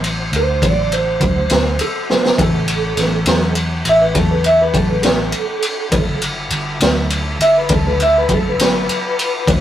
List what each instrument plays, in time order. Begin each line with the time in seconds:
Already playing: fingered electric bass A1, tonewheel organ C4 E4 F#4 C5
0.04 ride
0.32 fingered electric bass D2, ride
0.36 electric slide guitar C5
0.62 fingered electric bass A1, electric slide guitar D5, kick, ride
0.92 electric slide guitar C5, ride
1.20 fingered electric bass D2, kick, ride
1.50 fingered electric bass D2, snare, ride
1.79 electric slide guitar A4, ride
2.10 electric slide guitar C5, snare
2.25 snare
2.38 fingered electric bass A1, tonewheel organ C#4 F#4 G4 B4, electric slide guitar A4, kick, ride
2.68 ride
2.97 fingered electric bass A1, snare, ride
3.26 fingered electric bass E2, snare, ride
3.55 ride
3.85 fingered electric bass A1, ride
3.89 electric slide guitar E5
4.02 electric slide guitar B4
4.15 fingered electric bass E2, electric slide guitar A4, kick, ride
4.31 electric slide guitar B4
4.44 electric slide guitar E5, ride
4.62 electric slide guitar B4
4.74 fingered electric bass A1, electric slide guitar A4, kick, ride
4.90 electric slide guitar B4
5.03 fingered electric bass A1, electric slide guitar A4, snare, ride
5.32 ride
5.62 ride
5.91 fingered electric bass G1, tonewheel organ E4 F4 A4 B4, kick, ride
6.22 ride
6.50 fingered electric bass G1, ride
6.80 fingered electric bass D2, snare, ride
7.10 ride
7.39 fingered electric bass G1, electric slide guitar E5, ride
7.58 electric slide guitar B4
7.69 fingered electric bass D2, electric slide guitar A4, kick, ride
7.87 electric slide guitar B4
8.00 electric slide guitar E5, ride
8.18 electric slide guitar B4
8.29 fingered electric bass G1, kick, ride
8.34 electric slide guitar A4
8.49 electric slide guitar B4
8.58 fingered electric bass G1, snare, ride
8.62 electric slide guitar B4
8.89 ride
9.19 ride
9.47 fingered electric bass D2, tonewheel organ C4 E4 F#4 B4, kick, ride